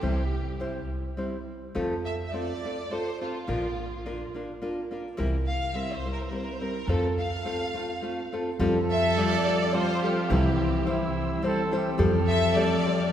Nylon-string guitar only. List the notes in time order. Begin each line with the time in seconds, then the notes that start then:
0.01 C3 E3 G3 C4 E4 C5
0.60 G3 C4 E4 C5
1.17 G3 C4 E4 C5
1.75 F3 A3 C4 F4 A4
2.33 A3 C4 F4 A4
2.64 A3 C4 F4 A4
2.90 A3 C4 F4 A4
3.20 A3 C4 F4 A4
3.47 A#2 F3 A#3 D4 F4 A#4
4.06 A#3 D4 F4 A#4
4.34 A#3 D4 F4 A#4
4.62 A#3 D4 F4 A#4
4.91 A#3 D4 F4 A#4
5.17 C3 E3 G3 C4 E4 A#4
5.74 G3 C4 E4 A#4
6.05 G3 C4 E4 A#4
6.30 G3 C4 E4 A#4
6.60 G3 C4 E4 A#4
6.89 F3 A3 C4 F4 A4
7.45 A3 C4 F4 A4
7.73 A3 C4 F4 A4
8.02 A3 C4 F4 A4
8.32 A3 C4 F4 A4
8.59 F3 G3 C4 F4 A4
9.17 G3 C4 F4 A4
9.46 G3 C4 F4 A4
9.73 G3 C4 F4 A4
10.02 G3 C4 F4 A4
10.30 C3 E3 G3 C4 E4 C5
10.85 G3 C4 E4 C5
11.42 G3 C4 E4 C5
11.71 G3 C4 E4 C5
11.98 F3 G3 C4 G4 A4
12.55 G3 C4 G4 A4
12.85 G3 C4 G4 A4